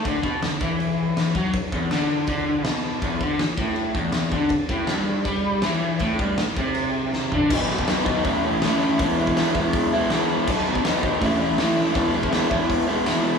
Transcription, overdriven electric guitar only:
X:1
M:4/4
L:1/8
Q:1/4=161
K:A
V:1 name="Overdriven electric guitar" clef=bass
D, B,, D, E,4 F, | z E,, D,2 D,2 B,,2 | E,, D, E,, A,,2 E,,2 D, | z A,, =G,,2 =G,2 E,2 |
A,, =G,, A,, =C,4 D, | [K:E] [B,,D,F,B,D] [F,B,D] [D,F,B,D] [F,B,D] [A,,E,A,CE] [A,CE] [A,,E,A,CE]2 | [E,G,B,E] [G,B,E] [E,G,B,E] [G,B,E]2 [G,B,E] [E,G,B,E]2 | [B,,D,F,B,D] [F,B,D] [D,F,B,D] [F,B,D] [A,,E,A,CE] [A,CE] [A,,E,A,CE]2 |
[E,G,B,E] [G,B,E] [E,G,B,E] [G,B,E]2 [G,B,E] [E,G,B,E]2 |]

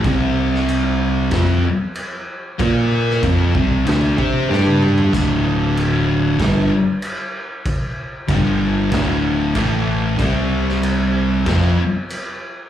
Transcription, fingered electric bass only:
X:1
M:4/4
L:1/8
Q:1/4=95
K:Cmix
V:1 name="Fingered electric bass" clef=bass
C,,4 F,, z3 | B,,2 F,, C,, D,, C, G,,2 | D,,,4 G,,, z3 | z2 G,,,2 D,,,2 A,,,2 |
C,,4 F,, z3 |]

